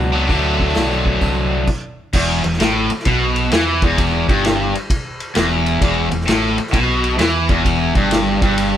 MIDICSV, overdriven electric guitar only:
0, 0, Header, 1, 3, 480
1, 0, Start_track
1, 0, Key_signature, 1, "minor"
1, 0, Tempo, 460476
1, 301, Time_signature, 4, 2, 24, 8
1, 9144, End_track
2, 0, Start_track
2, 0, Title_t, "Overdriven electric guitar"
2, 0, Program_c, 0, 29
2, 0, Note_on_c, 0, 47, 80
2, 0, Note_on_c, 0, 54, 82
2, 0, Note_on_c, 0, 59, 86
2, 0, Note_on_c, 0, 62, 84
2, 113, Note_off_c, 0, 62, 0
2, 115, Note_off_c, 0, 47, 0
2, 119, Note_off_c, 0, 54, 0
2, 122, Note_off_c, 0, 59, 0
2, 126, Note_on_c, 0, 62, 77
2, 137, Note_on_c, 0, 59, 78
2, 143, Note_on_c, 0, 54, 72
2, 150, Note_on_c, 0, 47, 69
2, 285, Note_off_c, 0, 62, 0
2, 288, Note_off_c, 0, 54, 0
2, 289, Note_off_c, 0, 47, 0
2, 291, Note_off_c, 0, 59, 0
2, 293, Note_on_c, 0, 50, 79
2, 300, Note_on_c, 0, 54, 84
2, 309, Note_on_c, 0, 57, 88
2, 317, Note_on_c, 0, 62, 82
2, 1730, Note_off_c, 0, 50, 0
2, 1734, Note_off_c, 0, 54, 0
2, 1739, Note_off_c, 0, 57, 0
2, 1743, Note_off_c, 0, 62, 0
2, 2230, Note_on_c, 0, 40, 102
2, 2535, Note_off_c, 0, 40, 0
2, 2552, Note_on_c, 0, 40, 70
2, 2677, Note_off_c, 0, 40, 0
2, 2708, Note_on_c, 0, 45, 103
2, 3014, Note_off_c, 0, 45, 0
2, 3194, Note_on_c, 0, 47, 97
2, 3664, Note_off_c, 0, 47, 0
2, 3675, Note_on_c, 0, 52, 105
2, 3977, Note_off_c, 0, 52, 0
2, 3992, Note_on_c, 0, 40, 104
2, 4457, Note_off_c, 0, 40, 0
2, 4472, Note_on_c, 0, 43, 100
2, 4936, Note_off_c, 0, 43, 0
2, 5580, Note_on_c, 0, 40, 104
2, 6048, Note_off_c, 0, 40, 0
2, 6061, Note_on_c, 0, 40, 109
2, 6360, Note_off_c, 0, 40, 0
2, 6372, Note_on_c, 0, 40, 71
2, 6505, Note_off_c, 0, 40, 0
2, 6538, Note_on_c, 0, 45, 103
2, 6847, Note_off_c, 0, 45, 0
2, 7009, Note_on_c, 0, 47, 97
2, 7484, Note_off_c, 0, 47, 0
2, 7489, Note_on_c, 0, 52, 103
2, 7801, Note_off_c, 0, 52, 0
2, 7813, Note_on_c, 0, 40, 106
2, 8284, Note_off_c, 0, 40, 0
2, 8299, Note_on_c, 0, 43, 92
2, 8765, Note_off_c, 0, 43, 0
2, 8777, Note_on_c, 0, 43, 89
2, 9144, Note_off_c, 0, 43, 0
2, 9144, End_track
3, 0, Start_track
3, 0, Title_t, "Muted overdriven electric guitar strokes"
3, 3031, Note_on_c, 9, 29, 53
3, 3135, Note_off_c, 9, 29, 0
3, 6861, Note_on_c, 9, 29, 55
3, 6965, Note_off_c, 9, 29, 0
3, 9144, End_track
0, 0, End_of_file